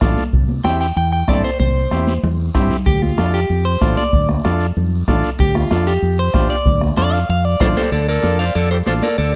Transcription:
0.01 A1 D4 F4 A4, bombo low, bombo rim, high conga, low conga, short guiro
0.17 high conga, short guiro
0.33 C2, bombo low, high conga, long guiro
0.49 high conga
0.64 E2 C4 E4 G4 G5, bombo rim, high conga, short guiro
0.81 G5, short guiro
0.96 E2 G5, high conga, long guiro
1.13 G5
1.28 G2 C4 E4 A4 D5, bombo low, bombo rim, high conga, short guiro
1.44 C5, short guiro
1.60 C2 C5, bombo low, high conga, long guiro
1.91 E2 C4 E4 G4, bombo rim, high conga, short guiro
2.07 high conga, short guiro
2.23 E2, low conga, long guiro
2.54 G2 C4 E4 G4, bombo low, bombo rim, low conga, short guiro
2.71 low conga, short guiro
2.86 D2 G4, bombo low, high conga, long guiro
3.02 F4, high conga
3.18 F2 D4 F4 A4, bombo rim, high conga, short guiro
3.34 G4, short guiro
3.49 F2, high conga, long guiro
3.65 C5
3.81 A1 D4 F4 A4, bombo low, bombo rim, high conga, short guiro
3.97 D5, high conga, short guiro
4.13 D2, bombo low, high conga, long guiro
4.29 bombo rim, high conga
4.44 F2 D4 F4 A4, bombo rim, high conga, short guiro
4.60 short guiro
4.76 F2, high conga, low conga, long guiro
5.08 A1 D4 F4 A4, bombo low, bombo rim, high conga, low conga, short guiro
5.24 short guiro
5.39 D2 G4, bombo low, high conga, long guiro
5.55 F4, bombo rim, high conga
5.71 F2 D4 F4 A4, bombo rim, high conga, short guiro
5.87 G4, short guiro
6.02 F2, high conga, long guiro
6.19 C5
6.34 A1 D4 F4 G4, bombo low, bombo rim, high conga, short guiro
6.50 D5, short guiro
6.66 D2, bombo low, high conga, long guiro
6.81 bombo rim, high conga
6.97 F2 D4 F4 A4 D5, bombo rim, high conga, short guiro
7.13 F5, short guiro
7.29 F2 F5, high conga, long guiro
7.45 D5
7.60 A1 D4 F4 A4 C5, bombo low, bombo rim, high conga, low conga, short guiro
7.77 G4 A4 C5, high conga, short guiro
7.92 D2 A4 D5, high conga, long guiro
8.09 A4 A#4 D5
8.22 F2 D4 F4 A4, high conga, short guiro
8.39 C5 D5 F5, short guiro
8.55 F2 A4 D5, high conga, long guiro
8.71 G4 A4 C5
8.86 A1 D4 F4 A4 C5, high conga, short guiro
9.02 A4 A#4 D5, high conga, short guiro
9.18 D2 A4 D5, high conga, long guiro

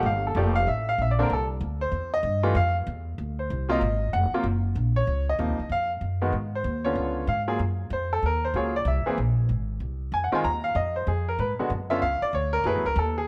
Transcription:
0.03 G1 F5
0.27 A4
0.35 F1 F3 A3 A#3 G4 D5
0.55 F5
0.67 A1 E5
0.89 F5
0.98 A#1 E5
1.11 D5
1.19 D3 A#3 C4 D4 A#4
1.30 C2 A4
1.61 D2
1.81 C5
1.92 E2
2.14 D#5
2.23 G2
2.43 E3 G3 A3 F4
2.55 F2 F5
2.87 E2
3.18 D2
3.39 C5
3.50 C2
3.69 C3 F#3 A#3 F4 D#5
3.81 G#1
4.13 F1 F#5
4.32 C3 F#3 A#3 F4, muted upright bass stroke
4.43 F#1
4.75 A#1
4.96 C#5
5.07 C#2
5.29 D#5
5.39 D#2 C3 F3 A#3 D#4
5.49 C#2
5.59 C2
5.69 F2 F5
6.01 F#2
6.21 D#3 G#3 B3 F#4
6.32 G#2
6.55 C5
6.64 D#2
6.84 D3 B3 C#4 F4 C#5
6.95 C#2
7.27 G#2 F5
7.48 F#3 A#3 F4 G#4
7.59 F#2
7.90 F2 C5
8.13 A4
8.23 D#2 A#4
8.45 C5
8.54 C#2 F#3 A#3 F4 G#4 C#5
8.76 D5
8.85 C2 E5
9.06 E3 A#3 C4 G#4, muted upright bass stroke
9.18 A#1
9.49 G#1
9.80 C2
10.12 F2 G#5
10.24 F#5
10.32 D#3 G#3 C4 F4 G#5, muted upright bass stroke
10.44 D#2 A#5
10.64 F5
10.75 F2 D#5
10.96 C5
11.07 F2 G#4
11.28 A#4
11.39 G#2 B4
11.59 D3 G#3 B3 F#4, muted upright bass stroke
11.70 F#2
11.90 D3 B3 C#4 F4 E5
12.02 C#2 F5
12.21 D5, muted upright bass stroke
12.33 D2 C#5
12.53 A#4
12.64 F#2 F#3 A3 E4 G#4 B4
12.75 E2
12.85 C#2 A#4
12.96 D#2 A4
13.18 G#4

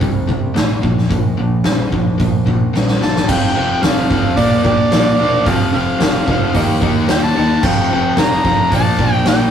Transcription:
0.00 C2 C3 G3, kick, open hi-hat
0.27 C3 G3, kick
0.54 A1 C3 A3, snare, open hi-hat
0.82 A#1 A#2 F3, kick
0.98 snare
1.09 A#1 A#2 F3, kick, open hi-hat
1.37 A#1 A#2 F3
1.64 A#1 A#2 G3, snare, open hi-hat
1.92 A#1 A#2 F3, kick
2.18 A#1 A#2 F3, kick, open hi-hat
2.46 A#2 F3, kick
2.73 A#1 A#2 G3, snare
2.87 snare
3.01 G1 A#2 F3 A5, snare
3.16 snare
3.27 F1 F2 C3 F3 A4 C5 F5 G5, kick, crash
3.55 F1 F2 C3 F3 A4 C5 F5
3.82 F1 F2 C3 F3 A4 C5 F5, snare, open hi-hat
4.09 F1 F2 C3 F3 A4 C5 F5, kick
4.36 A#1 A#2 F3 A#3 A#4 D5 F5, kick, open hi-hat
4.64 A#1 A#2 F3 A#3 A#4 D5 G5, kick
4.91 A#1 A#2 F3 A#3 A#4 D5 F5, snare, open hi-hat
5.18 E1 A#2 F3 A#3 A#4 D5 F5
5.45 F1 F2 C3 F3 A4 C5 F5, kick, open hi-hat
5.72 F1 F2 C3 F3 A4 C5 F5
5.99 F1 F2 C3 F3 A4 C5 F5, snare, open hi-hat
6.27 F1 F2 C3 F3 A4 C5 D#5, kick
6.54 D#2 D#3 A#3 D#4 G4 A#4 D#5, kick, open hi-hat
6.81 D#2 D#3 A#3 D#4 G4 A#4 D#5, kick
7.08 D#2 D#3 A#3 D#4 G4 A#4 D#5 G5, snare, open hi-hat
7.23 A5
7.35 D#2 D#3 A#3 D#4 G4 A#4 D#5
7.63 F1 F2 C3 F3 A4 C5 F5 G5, kick, crash
7.91 F1 F2 C3 F3 A4 C5 G5
8.17 F1 F2 C3 F3 A4 C5 F5 A#5, snare, open hi-hat
8.44 F1 F2 C3 F3 A4 C5 F5, kick
8.70 A#1 A#2 F3 A#3 A#4 D5 F5 A5, kick, open hi-hat
8.97 A#1 A#2 F3 A#3 A#4 D5 G5, kick
9.24 A#1 A#2 F3 A#3 A#4, snare, open hi-hat
9.28 D5 G5

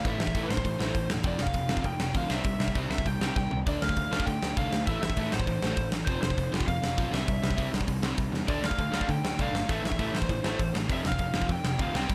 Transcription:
0.05 A1 A2 E3 A3 E5, kick, open hi-hat
0.19 A1 A2 E3 E5, snare
0.27 kick
0.35 A1 A2 E3 A3, kick, open hi-hat
0.43 B4
0.49 A1 A2 E3 C5, snare
0.57 kick
0.64 A1 A2 E3, kick, open hi-hat
0.79 A1 A2 E3 A3, snare
0.95 A1 A2 E3, kick, open hi-hat
1.08 E1 A2 E3, snare
1.23 F1 F2 C3 F3 D5, kick, open hi-hat
1.39 F1 F2 C3 F5, snare
1.47 kick
1.54 F1 F2 C3, kick, open hi-hat
1.69 F1 F2 C3 F3, snare
1.77 kick
1.84 F2 C3 G5, kick, open hi-hat
2.00 F1 F2 C3, snare
2.14 D2 F2 C3 F3 F5, kick, open hi-hat
2.30 C2 C3 G3 C4 E5, snare
2.44 C2 C3 G3, kick, open hi-hat
2.59 C2 C3 G3, snare
2.68 kick
2.75 C2 C3 G3 C4, kick, open hi-hat
2.89 C2 C3 G3 E5, snare
2.98 kick
3.06 C2 C3 G3 G5, kick, open hi-hat
3.19 C2 C3 G3 C4, snare
3.36 C2 C3 G3 G5, kick, snare
3.50 C2 C3 G3, floor tom
3.66 D2 D3 A3 D4 D5, kick, open hi-hat
3.82 D2 D3 A3 F5, snare
3.89 kick
3.96 D2 D3 A3, kick, open hi-hat
4.11 D2 D3 A3 D4, snare
4.20 kick
4.26 D3 A3 G5, kick, open hi-hat
4.43 D2 D3 A3, snare
4.57 C2 D3 A3 D4 F5, kick, open hi-hat
4.73 D2 D3 A3, snare
4.87 A1 A2 E3 A3 E5, kick, open hi-hat
5.02 A1 A2 E3 E5, snare
5.10 kick
5.17 A1 A2 E3 A3, kick, open hi-hat
5.32 A1 A2 E3 C5, snare
5.40 kick
5.47 A1 A2 E3, kick, open hi-hat
5.62 A1 A2 E3 A3, snare
5.77 A1 A2 E3, kick, open hi-hat
5.92 A1 A2 E3, snare
6.06 F1 F2 C3 F3 C5, kick, open hi-hat
6.21 F1 F2 C3 C5, snare
6.30 kick
6.37 F1 F2 C3, kick, open hi-hat
6.52 F1 F2 C3 F3, snare
6.60 kick
6.67 F2 C3 F5, kick, open hi-hat
6.82 F1 F2 C3, snare
6.96 B1 F2 C3 F3, kick, open hi-hat
7.11 C2 C3 G3 C4 E5, snare
7.27 C2 C3 G3, kick, open hi-hat
7.42 C2 C3 G3, snare
7.51 kick
7.57 C2 C3 G3 C4, kick, open hi-hat
7.72 C2 C3 G3, snare
7.81 kick
7.87 C2 C3 G3, kick, open hi-hat
8.02 C2 C3 G3 C4, snare
8.17 C2 C3 G3, kick, open hi-hat
8.32 E2 C3 G3, snare
8.47 D2 D3 A3 D4 D5, kick, open hi-hat
8.61 D2 D3 A3, snare
8.66 F5
8.71 kick
8.78 D2 D3 A3, kick, open hi-hat
8.92 D2 D3 A3 D4, snare
9.01 kick
9.08 D3 A3 G5, kick, open hi-hat
9.24 D2 D3 A3, snare
9.38 C2 D3 A3 D4 F5, kick, open hi-hat
9.53 G1 D3 A3, snare
9.68 A1 A2 E3 A3 E5, kick, open hi-hat
9.82 A1 A2 E3, snare
9.87 E5
9.92 kick
9.99 A1 A2 E3 A3, kick, open hi-hat
10.13 A1 A2 E3 C5, snare
10.22 kick
10.29 A1 A2 E3, kick, open hi-hat
10.44 A1 A2 E3 A3, snare
10.59 A1 A2 E3, kick, open hi-hat
10.74 A1 A2 E3, snare
10.88 F1 F2 C3 F3, kick, open hi-hat
10.93 E5
11.04 F1 F2 C3 F5, snare
11.12 kick
11.19 F1 F2 C3, kick, open hi-hat
11.34 F1 F2 C3 F3, snare
11.42 kick
11.48 F2 C3 G5, kick, open hi-hat
11.64 F1 F2 C3, snare
11.78 D2 F2 C3 F3 F5, kick, open hi-hat
11.94 C2 C3 G3 C4 G5, snare
12.08 C2 C3 G3, kick, open hi-hat

